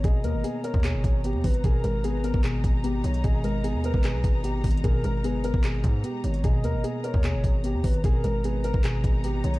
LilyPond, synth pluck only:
\new Staff \with { instrumentName = "Synth pluck" } { \clef bass \time 4/4 \key gis \minor \tempo 4 = 150 <b, dis b>8 ais8 b8 b8 b,4 b8 dis8 | b,8 gis8 b8 b8 b,4 b8 dis8 | b,8 gis8 b8 b8 b,4 b8 dis8 | b,8 gis8 b8 b8 b,4 b8 dis8 |
b,8 ais8 b8 b8 b,4 b8 dis8 | b,8 gis8 b8 b8 b,4 b8 dis8 | }